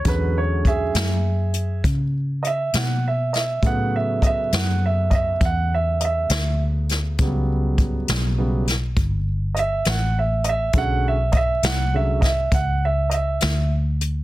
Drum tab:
HH |x-xx-xx-xx-x|x-xx-xx-xx-x|x-xx-xx-xx-x|x-xx-xx-xx-x|
SD |---o-----o-o|---o-----o-o|---o-o---o--|---o-o---o--|
BD |o-o---o-----|o-o--oo-----|o-o---o-----|o-o--oo-----|